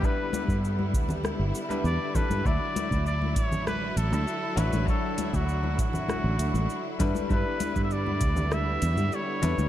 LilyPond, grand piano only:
\new Staff \with { instrumentName = "Grand piano" } { \time 4/4 \key d \major \tempo 4 = 99 <g d' e' b'>2~ <g d' e' b'>8. <g d' e' b'>8. <g d' e' a'>8 | <fis d' e' e''>2.~ <fis d' e' e''>8 <fis d' e' cis''>8 | <fis d' e' cis''>2.~ <fis d' e' cis''>8 <g d' e' b'>8 | <g d' e' b'>2.~ <g d' e' b'>8 <g d' e' b'>8 | }